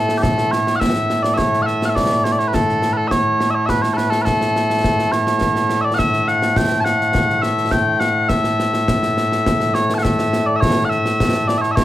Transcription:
Already playing: A2 A3 A4
0.09 snare
0.18 G4
0.23 A4, concert bass drum, snare
0.38 snare
0.51 C#5, snare
0.67 snare
0.76 F#5
0.80 E5, concert bass drum, snare
0.96 snare
1.10 snare
1.23 D5, snare
1.34 C#5 E5
1.39 concert bass drum, snare
1.54 snare
1.62 E5 F#5
1.68 snare
1.82 F#5, snare
1.89 E5
1.95 D5, concert bass drum, snare
2.11 snare
2.24 C#5, snare
2.32 D5
2.39 C#5, snare
2.48 B4
2.54 A4, concert bass drum, snare
2.69 snare
2.82 snare
2.93 B4
2.97 A4
3.08 C#5 E5, concert bass drum, snare
3.41 snare
3.51 E5
3.55 C#5
3.66 B4 E5, concert bass drum, snare
3.82 C#5, snare
3.94 A4 B4
3.98 snare
4.10 A4, snare
4.22 A4 B4
4.27 concert bass drum, snare
4.41 snare
4.56 snare
4.70 snare
4.84 concert bass drum, snare
4.99 snare
5.12 C#5, snare
5.27 snare
5.41 concert bass drum, snare
5.56 snare
5.70 snare
5.81 D5 E5
5.94 F#5
5.98 E5, concert bass drum, snare
6.13 snare
6.28 F#5, snare
6.42 snare
6.56 G5, concert bass drum, snare
6.71 snare
6.80 F#5 A5
6.86 snare
7.01 snare
7.15 concert bass drum, snare
7.30 snare
7.42 E5, snare
7.58 snare
7.71 G5, concert bass drum, snare
8.00 F#5, snare
8.29 E5, concert bass drum, snare
8.44 snare
8.60 snare
8.74 snare
8.88 concert bass drum, snare
9.03 snare
9.18 snare
9.32 snare
9.46 concert bass drum, snare
9.60 snare
9.74 C#5, snare
9.90 snare
9.94 F#5 A5
10.03 E5, concert bass drum, snare
10.19 snare
10.33 snare
10.46 D5
10.56 E5
10.60 C#5, concert bass drum, snare
10.85 F#5
10.89 E5, snare
11.06 snare
11.20 concert bass drum, snare
11.34 snare
11.48 D5, snare
11.58 C#5 E5
11.63 snare
11.71 E5
11.76 C#5, concert bass drum, snare

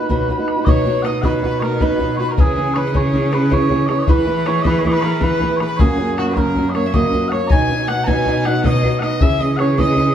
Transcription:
Already playing: B4
0.00 B3 D#4
0.09 B2 F#3 B3 D#4 F#4, bodhran
0.20 bodhran
0.28 F#3 B3 D#4 F#4, bodhran
0.38 B3 D#4 F#4
0.48 bodhran
0.56 B3 D#4 F#4
0.65 B2 F#3 B3 D#4 F#4 C#5 D#5, bodhran
0.85 F#3 B3 D#4 F#4
1.02 F#3 B3 D#4 F#4 D#5 F#5, bodhran
1.06 D#5
1.22 B2 F#3 B3 D#4 F#4 B4 F#5, bodhran
1.42 F#3 B3 D#4 F#4 B4, bodhran
1.60 F#3 B3 D#4 A#4 C#5, bodhran
1.64 F#4
1.80 B2 F#3 B3 D#4 F#4 B4, bodhran
1.99 F#3 B3 D#4 F#4, bodhran
2.17 F#3 B3 D#4 B4 C#5
2.21 F#4
2.28 A#4 C#5
2.37 C#3 E3 C#4 E4 G#4, bodhran
2.56 E3 C#4 E4 G#4
2.74 E3 C#4 E4 G#4 B4 C#5, bodhran
2.87 D#5
2.93 C#3 E3 C#4 E4 G#4 C#5, bodhran
3.12 E3 C#4 E4 G#4, bodhran
3.31 E3 C#4 E4 G#4 B4, bodhran
3.50 C#3 E3 C#4 E4 G#4 C#5, bodhran
3.69 E3 C#4 E4 G#4, bodhran
3.87 E3 C#4 E4 C#5 D#5, bodhran
3.91 G#4
3.99 C#5 D#5
4.07 E3 B3 E4 G#4 B4, bodhran
4.26 E3 B3 E4 G#4
4.45 E3 B3 E4 G#4 C#5, bodhran
4.62 E3 B3 E4 B4 D#5, bodhran
4.67 G#4 B4
4.78 C#5
4.84 E3 B3 E4 G#4 D#5, bodhran
4.90 B4
5.00 E3 B3 A#4 C#5, bodhran
5.05 E4 G#4
5.21 E3 B3 E4 G#4 B4, bodhran
5.41 E3 B3 E4 G#4, bodhran
5.56 E3 B4 C#5, bodhran
5.61 B3 E4 G#4 B4
5.76 F#2 C#3 F#3 A#3 G#4 C#5, bodhran
5.81 C#4 F#4
5.97 F#3 A#3 C#4 F#4
6.17 F#3 A#3 C#4 F#4, bodhran
6.29 B4
6.34 F#2 C#3 F#3 A#3 C#4 A#4 C#5, bodhran
6.38 F#4
6.55 F#3 A#3 C#4 F#4, bodhran
6.70 D#5
6.74 F#3 A#3 C#4 F#4 C#5, bodhran
6.86 E5
6.93 F#2 C#3 F#3 A#3 C#4 F#4 D#5, bodhran
7.12 F#3 A#3 C#4 F#4, bodhran
7.28 F#3 A#3 C#5 F#5, bodhran
7.33 C#4 F#4
7.48 B2 F#3 G#5 A#5, bodhran
7.52 B3 D#4 F#4
7.69 F#3 B3 D#4 F#4
7.87 F#3 B3 D#4 F#4 F#5, bodhran
8.04 B2 F#3 B3 D#4 G#5 A#5, bodhran
8.08 F#4
8.25 F#3 B3 D#4 F#4, bodhran
8.44 F#3 B3 D#4 F#4 F#5, bodhran
8.63 B2 F#3 B3 D#4 F#4 D#5, bodhran
8.83 F#3 B3 D#4 F#4, bodhran
8.99 F#3 B3 D#4 D#5 F#5, bodhran
9.03 F#4 D#5
9.20 C#3 E3 C#4 E4 G#4 E5, bodhran
9.39 E3 C#4 E4 G#4 D#5
9.57 E3 C#4 E4 C#5 F#5, bodhran
9.61 G#4
9.77 C#3 E3 C#4 E4 G#4 D#5, bodhran
9.96 E3 C#4 E4 G#4, bodhran

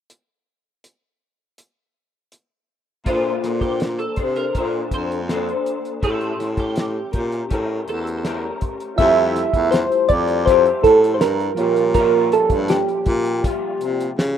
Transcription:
0.10 closed hi-hat
0.84 closed hi-hat
1.58 closed hi-hat
2.32 closed hi-hat
3.04 A#2 A#3 D4 F4 A4 C5, kick, closed hi-hat
3.42 A#2, snare, closed hi-hat
3.61 G4, kick, closed hi-hat
3.80 snare, closed hi-hat
3.99 A4, closed hi-hat
4.16 C3 D4 A4 C5, kick, closed hi-hat
4.36 A#4, closed hi-hat
4.53 A#2 A#3 D4 A4 C5, kick, closed hi-hat
4.91 F2 C5, kick, closed hi-hat
5.12 closed hi-hat
5.27 A#3 D4 A4 C5, snare, closed hi-hat
5.49 closed hi-hat
5.66 closed hi-hat
5.85 closed hi-hat
6.01 A2 A3 C#4 G4 A4, kick, closed hi-hat
6.21 closed hi-hat
6.39 A2, snare, closed hi-hat
6.57 G4, kick, closed hi-hat
6.76 snare, closed hi-hat
7.12 A#2 C#4 G4 A#4, kick, closed hi-hat
7.32 closed hi-hat
7.49 A2 A3 C#4 G4 A#4, kick, closed hi-hat
7.87 E2 A4, closed hi-hat
8.07 closed hi-hat
8.23 A3 C#4 G4 A#4, snare, closed hi-hat
8.61 kick, closed hi-hat
8.80 closed hi-hat
8.96 F2 G3 A3 E4 F4 E5, kick, closed hi-hat
9.01 G4
9.36 snare, closed hi-hat
9.54 E2, kick, closed hi-hat
9.71 C5, snare, closed hi-hat
9.92 closed hi-hat
10.09 F2 D5, kick, closed hi-hat
10.28 closed hi-hat
10.45 F3 E4 G4 C5, kick, closed hi-hat
10.66 closed hi-hat
10.83 A2 A4, kick, closed hi-hat
11.04 closed hi-hat
11.14 C5
11.20 G2 A#4, snare, closed hi-hat
11.40 closed hi-hat
11.55 A#2 F3 A#3 C#4 F4 C#5, closed hi-hat
11.60 G3 G4
11.76 closed hi-hat
11.94 A#2 G3 C#4 A#4, kick, closed hi-hat
11.99 F4
12.32 A4, closed hi-hat
12.50 G2, kick, closed hi-hat
12.68 G4, snare, closed hi-hat
12.89 closed hi-hat
13.06 A#2, kick, closed hi-hat
13.25 closed hi-hat
13.42 A#2 G3 F4, kick, closed hi-hat
13.81 C3, closed hi-hat
14.00 closed hi-hat
14.18 C#3, snare, closed hi-hat

